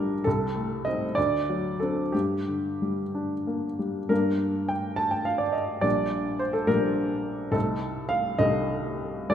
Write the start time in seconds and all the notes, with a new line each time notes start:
Already playing: A#1 A#2 G3 D4 G4 A#4 D5
0.24 C2 A4
0.56 A3
0.85 C4 D#4 D#5
1.15 D2 D5
1.50 F#3
1.80 C4 D4 A4
2.12 G2 G4
2.48 D3
2.82 G3
3.15 D4
3.47 A#3
3.79 G3
4.09 G2 G3 A#3 D4 A#4
4.69 G5
4.96 A5
5.11 G5
5.25 F5
5.38 D5
5.53 D#5
5.81 A#1 G3 A#3 D4 D5
6.39 C5
6.53 A4
6.67 A#1 G3 A#3 D4 A#4
7.52 C2 A3 D#4 A4
8.09 F5
8.39 C2 A3 D#4 D#5
9.29 D2 G3 A3 D4 D5